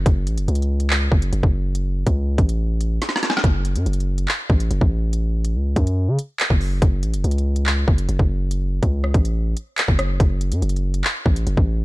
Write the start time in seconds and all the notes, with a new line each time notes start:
0.06 F#1, kick, closed hi-hat
0.27 A1, closed hi-hat
0.38 F#1, closed hi-hat
0.48 C#2, closed hi-hat
0.55 closed hi-hat
0.62 closed hi-hat
0.80 closed hi-hat
0.90 clap
1.12 F#1, kick
1.22 closed hi-hat
1.33 F#1, closed hi-hat
1.43 F#1, kick
1.75 closed hi-hat
2.07 C#2, kick, closed hi-hat
2.38 A1, kick, closed hi-hat
2.49 closed hi-hat
2.81 closed hi-hat
3.02 snare, closed hi-hat
3.09 snare
3.16 snare
3.23 snare, closed hi-hat
3.30 snare
3.37 snare
3.44 F#1, kick, closed hi-hat
3.65 closed hi-hat
3.76 F#2, closed hi-hat
3.86 F#1, closed hi-hat
3.93 closed hi-hat
4.00 closed hi-hat
4.18 closed hi-hat
4.28 clap
4.50 A1, kick
4.60 closed hi-hat
4.71 F#1, closed hi-hat
4.81 A1, kick
5.13 closed hi-hat
5.45 closed hi-hat
5.55 C#2
5.76 F#2, kick, closed hi-hat
5.87 closed hi-hat
6.08 C#3
6.19 closed hi-hat
6.40 clap, closed hi-hat
6.50 F#1, kick
6.61 open hi-hat
6.82 F#1, kick, closed hi-hat
7.03 A1, closed hi-hat
7.14 F#1, closed hi-hat
7.24 C#2, closed hi-hat
7.31 closed hi-hat
7.38 closed hi-hat
7.56 closed hi-hat
7.66 clap
7.88 F#1, kick
7.98 closed hi-hat
8.09 F#1, closed hi-hat
8.19 F#1, kick
8.51 closed hi-hat
8.83 C#2, kick, closed hi-hat
9.04 cross-stick
9.14 A1, kick, closed hi-hat
9.25 closed hi-hat
9.57 closed hi-hat
9.78 clap, closed hi-hat
9.88 F#1, kick
9.99 cross-stick, closed hi-hat
10.20 F#1, kick, closed hi-hat
10.41 closed hi-hat
10.52 F#2, closed hi-hat
10.62 F#1, closed hi-hat
10.69 closed hi-hat
10.76 closed hi-hat
10.94 closed hi-hat
11.04 clap
11.26 A1, kick
11.36 closed hi-hat
11.47 F#1, closed hi-hat
11.57 A1, kick